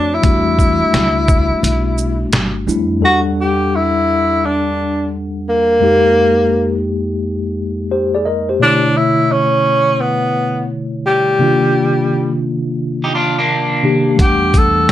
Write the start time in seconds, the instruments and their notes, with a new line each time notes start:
Already playing: upright bass F2, tine electric piano A3 D4 F#4 C#5, tenor saxophone D4
0.14 tenor saxophone E4
0.22 upright bass E2, tine electric piano G3 A3 D4 F#4, kick, closed hi-hat
0.59 kick, shaker
0.82 muted upright bass stroke
0.93 upright bass C#2, snare, closed hi-hat
1.28 kick, shaker
1.52 muted upright bass stroke
1.63 upright bass B1, closed hi-hat
1.98 shaker
2.32 upright bass G1, snare, closed hi-hat
2.67 upright bass F2, tine electric piano G3 A3 D4 E4, shaker
3.01 tine electric piano E2 G3 D4 A4 F#5
3.05 tenor saxophone F#4
3.41 tenor saxophone G4
3.76 tenor saxophone E4
4.45 tenor saxophone D4
5.49 tenor saxophone A#3
5.80 tine electric piano F2 G#3 A#3 D#4 G4
7.91 tine electric piano G4 C5
8.15 tine electric piano G#4 D5
8.26 tine electric piano A#4 D#5
8.49 tine electric piano G4 C5
8.59 tine electric piano B2 D3 A3 E4 C#5, tenor saxophone D4
8.97 tenor saxophone E4
9.31 tenor saxophone C#4
10.01 tenor saxophone B3
11.06 tenor saxophone G3
11.39 tine electric piano C3 D#3 A#3 D4
11.43 tine electric piano F4
13.04 clean electric guitar D#4 G4
13.15 clean electric guitar D4 F4
13.39 clean electric guitar A#3 D4
13.83 tine electric piano C3 D#3 A#3 D4 G4
14.16 upright bass E2, tine electric piano G3 A3 D4, kick, closed hi-hat
14.21 tenor saxophone G4, tine electric piano F#5
14.54 tenor saxophone A4, kick, closed hi-hat, shaker